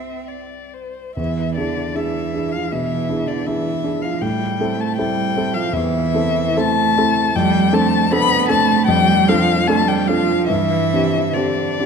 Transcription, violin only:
Already playing: E5
0.28 D5
0.74 C5
1.16 E5
1.56 D5
1.96 E5
2.52 F5
2.72 E5
3.28 D5
3.46 E5
4.02 F5
4.22 G5
4.81 A5
4.97 G5
5.54 F5
5.73 E5
6.59 A5
7.36 G5
7.74 A5
8.12 B5
8.49 A5
8.87 G5
9.28 F5
9.67 A5
9.88 G5
10.07 F5
10.47 E5
11.34 D5

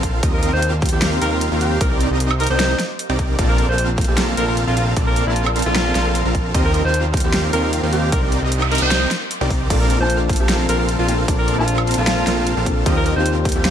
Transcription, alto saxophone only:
0.33 A#4
0.43 A#4
0.53 C5
0.92 G4
1.22 A#4
1.32 A#4
1.61 G4
1.81 A#4
1.91 A#4
2.40 A#4
2.50 C5
3.49 A#4
3.58 A#4
3.69 C5
4.08 G4
4.37 A#4
4.48 A#4
4.68 F4
4.77 F4
5.07 A#4
5.27 F4
5.66 F4
6.65 A#4
6.74 A#4
6.85 C5
7.24 G4
7.53 A#4
7.64 A#4
7.93 G4
8.12 A#4
8.23 A#4
8.72 A#4
8.82 C5
9.81 A#4
9.90 A#4
10.00 C5
10.40 G4
10.69 A#4
10.79 A#4
10.99 F4
11.08 F4
11.39 A#4
11.58 F4
11.98 F4
12.97 A#4
13.06 A#4
13.16 C5
13.56 G4

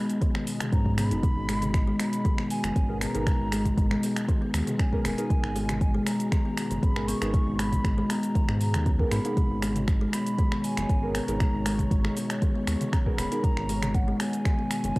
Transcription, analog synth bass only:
0.73 G#2
1.11 F#1
1.37 G#1
2.64 F#1
2.76 G#1
3.15 G#1
3.40 G#1
4.54 D#2
5.05 D#1
5.44 G#1
6.71 F#1
6.83 G#1
7.21 G#1
7.47 G#1
8.49 G#2
8.74 D#2
9.12 G#2
9.50 G#1
10.77 F#1
10.89 G#1
11.28 G#1
11.54 G#1
12.67 D#2
13.18 D#1
13.57 G#1
14.84 F#1
14.96 G#1

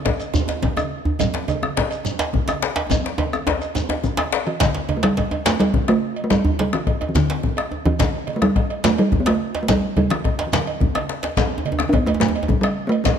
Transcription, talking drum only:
4.47 E3
4.61 D3
4.97 A3
5.04 G3
5.47 A3
5.60 G3
5.89 A3
6.24 A3
6.31 G3
6.60 G3
6.74 E3
7.09 E3
7.16 D3
7.86 E3
8.00 D3
8.36 A3
8.42 G3
8.85 A3
8.99 G3
9.20 B3
9.28 A3
9.63 A3
9.70 G3
9.97 G3
10.11 E3
10.47 E3
10.53 D3
11.89 B3 D4
12.06 A3
12.20 A3
12.48 G3
12.61 G3
12.87 A3 B3
13.04 G3

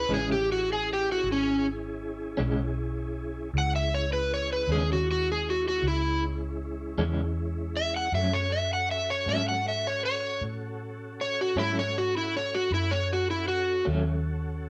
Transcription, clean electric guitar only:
0.09 C#3 E3 G#3 C#4
2.37 C#3 E3 G#3 C#4
4.69 C#3 E3 G#3 C#4
6.98 C#3 E3 G#3 C#4
8.14 F#2 F#3 A3 C#4
9.28 F#2 F#3 A3 C#4
11.57 F#2 F#3 A3 C#4
13.85 F#2 F#3 A3 C#4

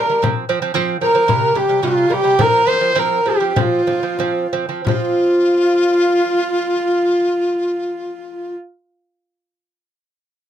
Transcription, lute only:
0.09 G3 D4
0.22 F3 C4
0.49 F3 C4
0.62 F3 C4
0.74 F3 C4
1.01 F3 C4
1.15 F3 C4
1.28 C3 G3
1.55 C3 G3
1.69 C3 G3
1.83 C3 G3
2.10 C3 G3
2.24 C3 G3
2.39 F3 C4
2.66 F3 C4
2.81 F3 C4
2.95 F3 C4
3.25 F3 C4
3.40 F3 C4
3.56 F3 C4
3.87 F3 C4
4.03 F3 C4
4.20 F3 C4
4.53 F3 C4
4.69 F3 C4
4.85 F3 C4

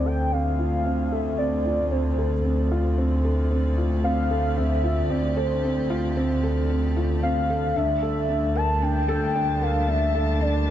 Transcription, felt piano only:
Already playing: C4 F4
0.06 A4
0.32 C4
0.59 F4
0.86 C4
1.12 A4
1.39 C4
1.65 F4
1.92 C4
2.18 A4
2.45 C4
2.72 F4
2.98 C4
3.24 A4
3.51 C4
3.78 F4
4.04 C4
4.31 A4
4.57 C4
4.84 F4
5.10 C4
5.37 A4
5.64 C4
5.90 F4
6.17 C4
6.43 A4
6.70 C4
6.97 F4
7.23 C4
7.50 A4
7.76 D4
8.03 A4
8.29 D4
8.55 A#4
8.82 D4
9.08 A4
9.35 D4
9.62 A#4
9.88 D4
10.15 A4
10.41 D4

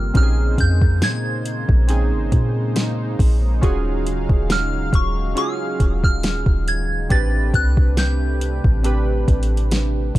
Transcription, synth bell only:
Already playing: F6
0.17 F6
0.60 G6
1.04 G#6
4.52 F6
4.95 C#6
5.38 F6
6.04 F6
6.68 G#6
7.12 A6
7.55 F#6
7.98 G6

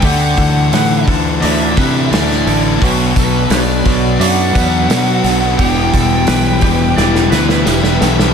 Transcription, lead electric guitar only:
0.06 F#5
1.41 E5
2.10 D5
3.20 B4
3.53 D5
4.20 F#5
5.57 G5
7.68 E5

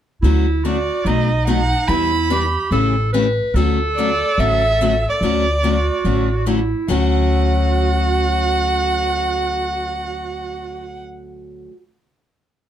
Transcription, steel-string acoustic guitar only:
0.24 D3 F#3 A3 C#4 F#4
0.65 D3 F#3 A3 C#4 F#4
1.06 B2 F#3 A3 D#4 F#4
1.47 B2 F#3 A3 D#4 F#4
1.88 E3 G3 D4 E4 B4
2.30 E3 G3 D4 E4 B4
2.72 C#3 E3 A3 C#4 G4
3.14 C#3 E3 A3 C#4 G4
3.56 D3 F#3 A3 C#4 F#4
3.98 D3 F#3 A3 C#4 F#4
4.39 D3 F#3 A3 C#4 F#4
4.81 D3 F#3 A3 C#4 F#4
5.23 D3 F#3 A3 C#4 F#4
5.63 D3 F#3 A3 C#4 F#4
6.05 D3 F#3 A3 C#4 F#4
6.46 D3 F#3 A3 C#4 F#4
6.88 D3 F#3 A3 C#4 F#4

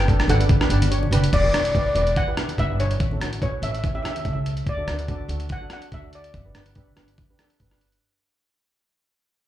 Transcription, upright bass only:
Already playing: G1
0.28 G1
0.70 G1
1.11 F#1
1.33 E1
1.53 E1
1.95 E1
2.58 G1
3.00 A1
3.21 A1
3.62 A1
4.25 C#2
4.66 D2
4.87 D2
5.28 D2
5.92 D2
6.34 G1
6.55 G1
6.97 G1
7.60 G1

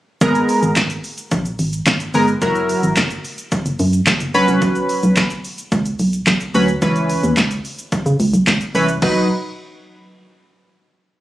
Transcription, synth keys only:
0.21 G#3 B3 A#4
2.14 G#3 B3 A#4
2.42 F#3 E4 A#4
4.34 F#3 C#4 B4
6.54 F#3 C#4 B4
6.82 E3 C#4 B4
8.75 E3 C#4 B4
9.02 F#3 D#4 B4

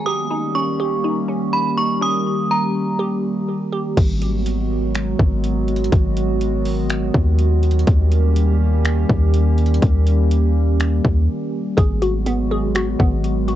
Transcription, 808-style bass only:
3.97 G#1
5.19 G#1
5.92 G#1
7.14 D#2
7.87 D#2
9.10 D#2
9.83 D#2
11.05 D#2
11.78 G#1
13.00 G#1

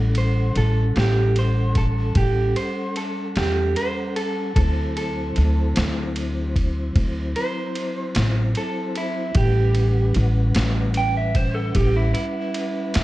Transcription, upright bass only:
Already playing: A1
0.56 A1
0.96 A1
2.16 A1
3.37 E2
4.56 D2
5.37 D2
5.77 D2
6.96 D2
8.16 A1
9.35 A1
10.16 A1
10.56 A1
11.75 A1
12.95 E2

